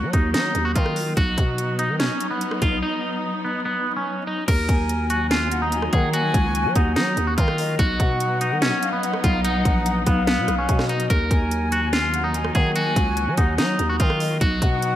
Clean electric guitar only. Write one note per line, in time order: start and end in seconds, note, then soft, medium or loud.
0.13 0.29 D#4 medium
0.34 0.63 D#4 medium
0.65 0.73 F#4 medium
0.75 1.14 F4 medium
1.17 1.75 F#4 loud
1.79 1.95 D#4 medium
2.00 2.29 C#4 medium
2.31 2.60 B3 medium
2.62 2.78 F4 medium
2.83 3.41 D#4 loud
3.45 3.60 B3 medium
3.65 3.94 B3 medium
3.96 4.26 C#4 medium
4.27 4.43 D#4 medium
4.48 5.06 A#4 medium
5.10 5.26 F#4 medium
5.31 5.60 F4 medium
5.62 5.91 D#4 medium
5.93 6.09 G#4 medium
6.14 6.72 F#4 loud
6.76 6.92 D#4 medium
6.96 7.25 D#4 medium
7.27 7.35 F#4 medium
7.38 7.77 F4 medium
7.79 8.37 F#4 loud
8.41 8.57 D#4 medium
8.62 8.91 C#4 medium
8.93 9.22 B3 medium
9.24 9.40 F4 medium
9.45 10.03 D#4 loud
10.07 10.23 B3 medium
10.27 10.56 B3 loud
10.58 10.88 C#4 medium
10.89 11.05 D#4 medium
11.10 11.68 A#4 medium
11.72 11.88 F#4 medium
11.93 12.22 F4 medium
12.24 12.53 D#4 medium
12.55 12.71 G#4 medium
12.76 13.34 F#4 loud
13.38 13.54 D#4 medium
13.58 13.88 D#4 loud
13.89 13.97 F#4 medium
14.00 14.39 F4 medium
14.41 14.96 F#4 loud